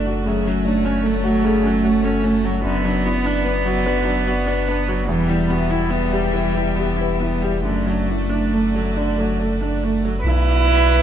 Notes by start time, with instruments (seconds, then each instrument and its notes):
Already playing: sub bass F#1, felt piano F#2 A3 D4 E4 F#4 A4, cello A3, string section A3 F#4 D5, viola D4
0.06 felt piano F#4
0.25 felt piano F#2, viola C#3, cello A3, string section C#5
0.45 viola F#3, felt piano C#4
0.65 viola A3, felt piano D4
0.84 felt piano C#4, viola C#4
1.03 felt piano A3, viola A3
1.24 viola F#3, felt piano F#4
1.44 viola C#3, felt piano A4
1.64 viola F#3, felt piano C#4
1.84 viola A3, felt piano F#4
2.03 viola C#4, felt piano A4
2.24 viola A3, felt piano C#4
2.44 viola F#3, felt piano F#4
2.63 sub bass F#1, felt piano F#2, viola D3, cello B3, string section B3 F#4 D5
2.85 viola F#3, felt piano D4
3.06 viola B3, felt piano E4
3.25 felt piano D4, viola D4
3.45 felt piano B3, viola B3
3.66 viola F#3, felt piano F#4
3.86 viola D3, felt piano B4
4.05 viola F#3, felt piano D4
4.27 viola B3, felt piano F#4
4.47 viola D4, felt piano B4
4.68 viola B3, felt piano D4
4.88 viola F#3, felt piano F#4
5.07 sub bass E1, felt piano E2, viola E3, cello G3, string section G4 E5
5.29 viola G3, felt piano E4
5.49 viola B3, felt piano F#4
5.70 viola E4, felt piano E4
5.90 viola B3, felt piano B3
6.12 viola G3, felt piano G4
6.33 viola E3, felt piano B4
6.55 viola G3, felt piano E4
6.76 viola B3, felt piano G4
6.97 viola E4
7.01 felt piano B4
7.19 viola B3, felt piano E4
7.42 viola G3, felt piano G4
7.63 sub bass F#1, felt piano F#2, viola D3, cello A3, string section A3 F#4 D5
7.86 viola F#3, felt piano D4
8.08 viola A3, felt piano E4
8.30 viola D4, felt piano D4
8.53 felt piano A3, viola A3
8.75 viola F#3, felt piano A4
8.97 viola D3, felt piano D4
9.18 viola F#3, felt piano A3
9.39 viola A3, felt piano A4
9.61 viola D4, felt piano D4
9.84 viola A3, felt piano A3
10.04 viola F#3, felt piano A4
10.24 sub bass B1, felt piano B1, string section B3 F#4 D5, cello E4, viola B4
10.67 felt piano B3